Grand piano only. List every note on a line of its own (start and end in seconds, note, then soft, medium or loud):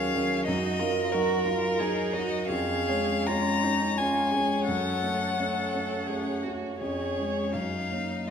0.00 0.49 D#2 medium
0.00 0.15 F#3 medium
0.00 0.16 C#4 medium
0.00 0.16 A#4 medium
0.15 0.44 F#3 medium
0.15 0.44 C#4 medium
0.15 0.44 A#4 medium
0.48 0.79 F#2 medium
0.81 1.10 F#3 medium
0.81 1.10 D#4 medium
0.81 1.11 A#4 medium
1.14 1.43 F#3 medium
1.14 1.43 D#4 medium
1.14 1.43 A#4 medium
1.45 1.76 F#3 medium
1.45 1.76 D#4 medium
1.45 1.76 A#4 medium
1.79 2.10 F#3 medium
1.79 2.11 D#4 medium
1.79 2.11 A#4 medium
2.14 2.45 F#3 medium
2.14 2.46 D#4 medium
2.14 2.46 A#4 medium
2.50 2.86 F2 medium
2.89 3.24 G#3 medium
2.89 3.24 C#4 medium
2.89 3.24 C#5 medium
3.28 3.61 G#3 medium
3.28 3.61 C#4 medium
3.28 3.61 C#5 medium
3.64 3.95 G#3 soft
3.64 3.95 C#4 medium
3.99 4.29 G#3 medium
3.99 4.29 C#4 medium
3.99 4.30 C#5 medium
4.34 4.64 G#3 medium
4.34 4.64 C#4 medium
4.34 4.64 C#5 medium
4.68 5.01 F#2 medium
5.02 5.34 A3 medium
5.02 5.34 C#4 soft
5.02 5.34 C#5 medium
5.39 5.69 A3 soft
5.39 5.70 C#4 soft
5.39 5.70 C#5 medium
5.73 6.05 A3 soft
5.73 6.05 C#4 soft
5.73 6.05 C#5 soft
6.09 6.41 A3 soft
6.09 6.41 C#4 soft
6.09 6.41 C#5 medium
6.45 6.77 A3 soft
6.45 6.77 C#4 soft
6.45 6.77 C#5 soft
6.81 7.16 F2 medium
7.18 7.50 G#3 soft
7.18 7.50 C#4 soft
7.18 7.51 C#5 soft
7.55 7.90 F#2 medium
7.91 8.24 A#3 soft
7.91 8.24 D#4 soft
7.91 8.25 C#5 soft